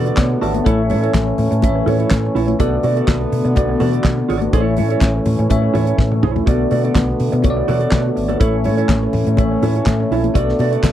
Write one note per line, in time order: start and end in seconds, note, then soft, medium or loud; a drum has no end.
0.00 0.10 B2 medium
0.00 0.65 D3 medium
0.00 4.50 A3 medium
0.00 0.65 B3 medium
0.00 0.68 B3 medium
0.00 0.68 F#4 medium
0.00 0.68 G4 medium
0.00 0.65 A4 medium
0.00 0.67 D5 medium
0.06 0.17 F#4 medium
0.06 0.17 A4 medium
0.06 0.17 D5 medium
0.06 closed hi-hat soft
0.17 0.34 B2 loud
0.17 0.41 C#5 medium
0.17 0.41 F#5 medium
0.17 muted clean electric guitar stroke soft
0.17 kick loud
0.17 snare loud
0.17 clap medium
0.17 closed hi-hat medium
0.17 high conga medium
0.30 muted clean electric guitar stroke soft
0.41 0.59 G#1 medium
0.41 0.57 F#4 medium
0.41 0.54 A4 medium
0.41 0.53 D5 medium
0.41 0.65 E5 medium
0.41 0.88 A5 medium
0.41 open hi-hat medium
0.54 muted clean electric guitar stroke soft
0.54 closed hi-hat soft
0.54 high conga medium
0.65 0.92 A1 loud
0.65 2.58 E3 medium
0.65 1.34 A3 medium
0.65 2.58 C#4 medium
0.65 0.81 E4 medium
0.65 1.34 A4 medium
0.65 0.81 A4 medium
0.65 1.34 C#5 medium
0.65 0.82 C#5 medium
0.65 1.34 E5 medium
0.65 kick loud
0.65 closed hi-hat medium
0.65 muted conga soft
0.90 1.07 A2 medium
0.90 1.02 E4 medium
0.90 1.02 A4 medium
0.90 1.01 C#5 medium
0.90 open hi-hat medium
0.90 muted conga medium
1.02 1.13 E4 soft
1.02 1.13 A4 medium
1.02 1.13 C#5 medium
1.02 closed hi-hat soft
1.14 1.31 A1 medium
1.14 muted clean electric guitar stroke soft
1.14 kick medium
1.14 snare medium
1.14 clap medium
1.14 closed hi-hat medium
1.14 high conga medium
1.27 muted clean electric guitar stroke soft
1.38 1.47 A2 loud
1.38 open hi-hat medium
1.38 low conga medium
1.51 1.65 A2 loud
1.51 muted clean electric guitar stroke medium
1.51 closed hi-hat soft
1.62 1.80 A1 medium
1.62 2.31 A3 medium
1.62 2.31 A4 medium
1.62 1.69 B4 medium
1.62 2.32 E5 medium
1.62 muted clean electric guitar stroke soft
1.62 kick loud
1.62 closed hi-hat medium
1.62 muted conga medium
1.62 low conga medium
1.69 2.34 C#5 medium
1.75 muted clean electric guitar stroke soft
1.86 2.03 A2 medium
1.86 1.99 E4 medium
1.86 1.98 A4 medium
1.86 1.98 C#5 loud
1.86 open hi-hat medium
1.86 muted conga soft
1.86 low conga medium
1.99 2.10 E4 medium
1.99 2.10 A4 medium
1.99 2.10 C#5 medium
1.99 closed hi-hat soft
2.10 2.28 A2 loud
2.10 muted clean electric guitar stroke soft
2.10 kick loud
2.10 snare loud
2.10 clap medium
2.10 closed hi-hat medium
2.10 high conga medium
2.24 muted clean electric guitar stroke soft
2.35 2.52 A#1 medium
2.35 2.50 E4 medium
2.35 2.48 A4 medium
2.35 2.47 C#5 medium
2.35 open hi-hat medium
2.48 muted clean electric guitar stroke soft
2.48 closed hi-hat soft
2.48 high conga medium
2.59 2.76 B1 loud
2.59 4.51 D3 medium
2.59 4.51 B3 medium
2.59 3.28 B3 medium
2.59 3.28 F#4 medium
2.59 2.75 F#4 medium
2.59 3.28 A4 medium
2.59 2.75 A4 medium
2.59 3.28 D5 loud
2.59 2.75 D5 medium
2.59 kick medium
2.59 closed hi-hat medium
2.59 muted conga soft
2.83 3.00 B2 medium
2.83 2.96 F#4 medium
2.83 2.96 A4 medium
2.83 2.95 D5 medium
2.83 open hi-hat medium
2.83 muted conga soft
2.96 3.06 F#4 medium
2.96 3.07 A4 medium
2.96 3.07 D5 medium
2.96 closed hi-hat soft
3.08 3.25 B1 medium
3.08 muted clean electric guitar stroke soft
3.08 kick loud
3.08 snare loud
3.08 clap medium
3.08 closed hi-hat medium
3.08 high conga medium
3.21 muted clean electric guitar stroke soft
3.32 3.41 B2 loud
3.32 open hi-hat medium
3.45 3.53 B2 medium
3.45 muted clean electric guitar stroke medium
3.45 closed hi-hat soft
3.55 3.74 B1 loud
3.55 4.24 B3 medium
3.55 4.25 F#4 medium
3.55 4.25 A4 medium
3.55 4.25 D5 medium
3.55 muted clean electric guitar stroke soft
3.55 kick loud
3.55 closed hi-hat medium
3.55 muted conga medium
3.69 muted clean electric guitar stroke medium
3.80 3.97 B2 medium
3.80 3.93 F#4 medium
3.80 3.92 A4 medium
3.80 3.91 D5 medium
3.80 open hi-hat medium
3.80 low conga medium
3.92 4.03 F#4 medium
3.92 4.04 A4 medium
3.92 4.04 D5 medium
3.92 closed hi-hat soft
4.04 4.21 B2 loud
4.04 muted clean electric guitar stroke soft
4.04 kick loud
4.04 snare loud
4.04 clap medium
4.04 closed hi-hat medium
4.04 high conga medium
4.17 muted clean electric guitar stroke soft
4.29 4.46 G#1 medium
4.29 4.49 F#4 medium
4.29 4.41 A4 medium
4.29 4.41 D5 medium
4.29 open hi-hat medium
4.42 muted clean electric guitar stroke soft
4.42 closed hi-hat soft
4.42 high conga medium
4.53 4.80 A1 loud
4.53 6.46 E3 medium
4.53 5.22 A3 medium
4.53 10.92 A3 medium
4.53 6.46 C#4 medium
4.53 4.73 E4 medium
4.53 5.22 A4 medium
4.53 4.74 A4 medium
4.53 5.22 C#5 medium
4.53 4.74 C#5 medium
4.53 4.60 D5 medium
4.53 kick loud
4.53 closed hi-hat medium
4.53 muted conga soft
4.60 5.25 E5 medium
4.77 4.94 A2 medium
4.77 4.90 E4 medium
4.77 4.90 A4 medium
4.77 4.89 C#5 medium
4.77 open hi-hat medium
4.77 muted conga soft
4.90 5.01 E4 medium
4.90 5.01 A4 medium
4.90 5.01 C#5 medium
4.90 closed hi-hat soft
5.01 5.18 A1 loud
5.01 muted clean electric guitar stroke soft
5.01 kick loud
5.01 snare medium
5.01 clap medium
5.01 closed hi-hat medium
5.01 high conga medium
5.15 muted clean electric guitar stroke soft
5.26 5.35 A2 medium
5.26 open hi-hat medium
5.26 low conga medium
5.39 5.47 A2 medium
5.39 muted clean electric guitar stroke medium
5.39 closed hi-hat soft
5.50 5.67 A2 medium
5.50 6.18 A3 medium
5.50 6.18 A4 medium
5.50 6.19 C#5 medium
5.50 6.19 E5 medium
5.50 muted clean electric guitar stroke soft
5.50 kick medium
5.50 closed hi-hat medium
5.50 muted conga medium
5.50 low conga medium
5.62 muted clean electric guitar stroke soft
5.74 5.91 A2 medium
5.74 5.87 E4 medium
5.74 5.87 A4 medium
5.74 5.86 C#5 medium
5.74 open hi-hat medium
5.74 muted conga soft
5.74 low conga medium
5.87 5.97 E4 soft
5.87 5.98 A4 medium
5.87 5.98 C#5 medium
5.87 closed hi-hat soft
5.98 6.25 A2 loud
5.98 muted clean electric guitar stroke soft
5.98 kick loud
5.98 snare medium
5.98 high conga medium
6.12 muted clean electric guitar stroke medium
6.12 high tom medium
6.23 6.40 A#1 medium
6.23 6.43 E4 medium
6.23 6.35 A4 medium
6.23 6.34 C#5 medium
6.23 mid tom loud
6.36 muted clean electric guitar stroke medium
6.36 floor tom medium
6.36 high conga medium
6.46 6.64 B1 loud
6.46 8.39 D3 medium
6.46 7.15 B3 medium
6.46 8.39 B3 medium
6.46 6.62 F#4 medium
6.46 7.16 F#4 medium
6.46 6.62 A4 medium
6.46 7.16 A4 medium
6.46 6.62 D5 medium
6.46 7.16 D5 medium
6.46 kick loud
6.46 closed hi-hat medium
6.46 muted conga soft
6.71 6.88 B2 medium
6.71 6.83 F#4 medium
6.71 6.83 A4 medium
6.71 6.83 D5 medium
6.71 open hi-hat medium
6.71 muted conga medium
6.84 6.94 F#4 soft
6.84 6.94 A4 medium
6.84 6.95 D5 medium
6.84 closed hi-hat soft
6.95 7.12 B1 loud
6.95 muted clean electric guitar stroke soft
6.95 kick loud
6.95 snare medium
6.95 clap medium
6.95 closed hi-hat medium
6.95 high conga medium
7.08 muted clean electric guitar stroke soft
7.20 7.29 B2 loud
7.20 open hi-hat medium
7.32 7.41 B2 loud
7.32 muted clean electric guitar stroke medium
7.32 closed hi-hat soft
7.43 7.61 B1 medium
7.43 8.12 B3 medium
7.43 8.12 F#4 medium
7.43 8.12 A4 medium
7.43 7.50 C#5 medium
7.43 muted clean electric guitar stroke soft
7.43 kick loud
7.43 closed hi-hat medium
7.43 muted conga soft
7.50 8.15 D5 medium
7.57 muted clean electric guitar stroke medium
7.68 7.85 B2 medium
7.68 7.80 F#4 medium
7.68 7.80 A4 medium
7.68 7.79 D5 loud
7.68 open hi-hat medium
7.68 muted conga soft
7.68 low conga medium
7.80 7.90 F#4 soft
7.80 7.90 A4 medium
7.80 7.91 D5 medium
7.80 closed hi-hat soft
7.91 8.09 B2 loud
7.91 8.07 F#4 medium
7.91 8.04 A4 medium
7.91 8.03 D5 medium
7.91 kick loud
7.91 snare loud
7.91 clap medium
7.91 closed hi-hat medium
7.91 high conga medium
8.04 muted clean electric guitar stroke medium
8.16 8.34 G#1 medium
8.16 muted clean electric guitar stroke soft
8.16 open hi-hat soft
8.28 8.39 F#4 soft
8.28 8.39 A4 medium
8.28 8.40 D5 medium
8.28 closed hi-hat soft
8.28 high conga medium
8.40 8.67 A1 loud
8.40 10.33 E3 medium
8.40 9.09 A3 medium
8.40 10.33 C#4 medium
8.40 8.55 E4 medium
8.40 8.56 A4 medium
8.40 9.09 A4 medium
8.40 8.56 C#5 medium
8.40 9.09 C#5 medium
8.40 9.10 E5 medium
8.40 kick loud
8.40 closed hi-hat medium
8.40 muted conga medium
8.64 8.82 A2 medium
8.64 8.77 E4 medium
8.64 8.77 A4 medium
8.64 8.76 C#5 medium
8.64 open hi-hat medium
8.64 muted conga soft
8.77 8.88 E4 medium
8.77 8.89 A4 medium
8.77 8.88 C#5 medium
8.77 closed hi-hat soft
8.89 9.06 A1 medium
8.89 muted clean electric guitar stroke soft
8.89 kick medium
8.89 snare medium
8.89 clap medium
8.89 closed hi-hat medium
8.89 high conga medium
9.03 muted clean electric guitar stroke soft
9.13 9.23 A2 loud
9.13 open hi-hat medium
9.13 low conga medium
9.27 9.40 A2 loud
9.27 muted clean electric guitar stroke soft
9.27 closed hi-hat soft
9.37 9.55 A1 loud
9.37 10.06 A3 medium
9.37 10.06 A4 medium
9.37 10.06 C#5 medium
9.37 10.07 E5 medium
9.37 muted clean electric guitar stroke soft
9.37 kick loud
9.37 closed hi-hat medium
9.37 muted conga medium
9.37 low conga medium
9.52 muted clean electric guitar stroke soft
9.62 9.79 A2 loud
9.62 9.76 E4 medium
9.62 9.75 A4 medium
9.62 9.75 C#5 medium
9.62 open hi-hat medium
9.62 muted conga soft
9.62 low conga medium
9.75 9.87 E4 soft
9.75 9.86 A4 medium
9.75 9.86 C#5 medium
9.75 closed hi-hat soft
9.86 10.03 A2 loud
9.86 kick loud
9.86 snare loud
9.86 clap medium
9.86 closed hi-hat medium
9.86 high conga medium
10.00 muted clean electric guitar stroke medium
10.11 10.27 A#1 medium
10.11 10.26 E4 medium
10.11 10.24 A4 medium
10.11 10.23 C#5 medium
10.11 open hi-hat soft
10.24 muted clean electric guitar stroke soft
10.24 closed hi-hat soft
10.24 high conga medium
10.34 10.52 B1 loud
10.34 10.92 D3 medium
10.34 10.92 B3 medium
10.34 10.92 F#4 medium
10.34 10.50 F#4 medium
10.34 10.92 A4 medium
10.34 10.50 A4 medium
10.34 10.92 D5 medium
10.34 10.51 D5 medium
10.34 kick loud
10.34 closed hi-hat medium
10.34 muted conga soft
10.49 snare soft
10.59 10.76 B2 loud
10.59 10.72 F#4 medium
10.59 10.72 A4 medium
10.59 10.71 D5 medium
10.59 open hi-hat medium
10.59 muted conga medium
10.72 10.83 F#4 soft
10.72 10.83 A4 medium
10.72 10.83 D5 medium
10.72 closed hi-hat soft
10.83 10.92 B1 medium
10.83 muted clean electric guitar stroke soft
10.83 kick medium
10.83 snare loud
10.83 clap medium
10.83 closed hi-hat medium
10.83 high conga medium